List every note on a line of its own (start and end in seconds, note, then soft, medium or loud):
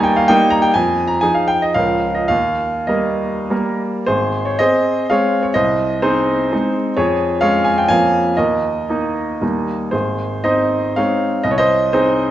0.00 0.31 D#2 medium
0.00 0.25 G3 medium
0.00 0.25 A#3 medium
0.00 0.25 D#4 medium
0.00 0.16 G5 medium
0.00 0.31 G#5 medium
0.00 0.32 A#5 loud
0.16 0.29 F5 medium
0.28 0.71 G3 medium
0.28 0.71 A#3 medium
0.28 0.71 D#4 medium
0.28 0.52 G5 loud
0.50 0.63 A#5 medium
0.62 0.74 G5 medium
0.74 1.21 F2 medium
0.74 1.09 G#5 medium
1.08 1.21 A#5 medium
1.21 1.72 F3 medium
1.21 1.72 D#4 soft
1.21 1.72 G#4 medium
1.21 1.35 G#5 medium
1.34 1.49 F5 medium
1.48 1.62 G5 medium
1.62 1.76 D#5 medium
1.74 2.29 C#2 medium
1.74 2.26 F3 soft
1.74 2.26 C#4 soft
1.74 2.27 A#4 soft
1.74 2.16 F5 medium
2.15 2.30 D#5 medium
2.28 2.87 D#2 medium
2.28 2.88 F5 medium
2.87 3.47 G3 soft
2.87 3.47 A#3 soft
2.87 3.47 A#4 soft
2.87 3.80 D#5 medium
3.50 4.04 G3 soft
3.50 4.04 A#3 soft
3.50 4.05 A#4 medium
4.06 4.58 G#1 medium
4.06 4.44 G#4 medium
4.06 4.46 C5 medium
4.45 4.59 C#5 medium
4.59 5.05 C4 soft
4.59 5.06 G#4 medium
4.59 5.06 C5 medium
4.59 5.09 D#5 medium
5.10 5.52 G#3 soft
5.10 5.52 C4 soft
5.10 5.52 G#4 soft
5.10 5.41 C#5 medium
5.10 5.44 F5 medium
5.43 5.54 C#5 medium
5.54 6.01 C2 medium
5.54 5.99 C5 medium
5.54 6.02 D#5 medium
6.02 6.48 C4 medium
6.02 6.48 D#4 medium
6.02 6.71 G#4 medium
6.02 6.75 C5 medium
6.52 6.93 G#3 soft
6.52 6.93 C4 soft
6.52 6.94 D#4 soft
6.97 7.41 F2 medium
6.97 7.39 G#4 medium
6.97 7.40 C#5 medium
7.41 7.85 G#3 medium
7.41 7.86 C#4 medium
7.41 7.64 C#5 medium
7.41 7.66 F5 medium
7.65 7.77 G#5 medium
7.78 7.90 G5 medium
7.89 8.36 F2 medium
7.89 8.34 F3 soft
7.89 8.34 A#3 soft
7.89 8.34 C#4 soft
7.89 8.35 F5 medium
7.89 8.37 G#5 loud
8.37 8.89 D#2 soft
8.37 9.64 A#4 medium
8.37 9.68 D#5 medium
8.89 9.38 A#3 soft
8.89 9.38 D#4 medium
9.41 9.91 D#2 soft
9.41 9.89 G3 soft
9.41 9.89 A#3 soft
9.41 9.89 D#4 soft
9.91 10.44 G#1 soft
9.91 10.42 G#4 soft
9.91 10.43 C5 medium
10.44 10.93 C4 soft
10.44 10.93 D#4 soft
10.44 10.93 C5 medium
10.44 10.97 D#5 medium
10.96 11.41 G#3 soft
10.96 11.41 C4 soft
10.96 11.42 D#4 soft
10.96 11.42 C#5 medium
10.96 11.44 F5 medium
11.44 11.92 C2 medium
11.44 11.51 D#5 medium
11.51 11.58 C#5 medium
11.58 11.91 C5 medium
11.58 11.93 D#5 medium
11.93 12.31 C4 medium
11.93 12.31 D#4 medium
11.93 12.31 G#4 medium
11.93 12.31 C5 medium